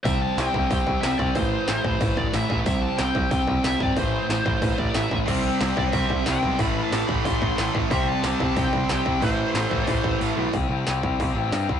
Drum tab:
CC |--------|--------|--------|--------|
HH |o-o-o-o-|o-o-o-o-|o-o-o-o-|o-o-o-o-|
SD |--o---o-|--o---o-|--o---o-|--o---o-|
BD |o--ooo-o|o--ooo-o|o--ooo-o|o--ooo-o|

CC |x-------|--------|--------|--------|
HH |--o-o-o-|o-o-o-o-|o-o-o-o-|o-o-o-o-|
SD |--o---o-|--o---o-|--o---o-|--o-----|
BD |o--ooo-o|o--ooo-o|o--ooo-o|o--ooo--|

CC |--------|
HH |o-o-o-o-|
SD |--o---o-|
BD |o--oo--o|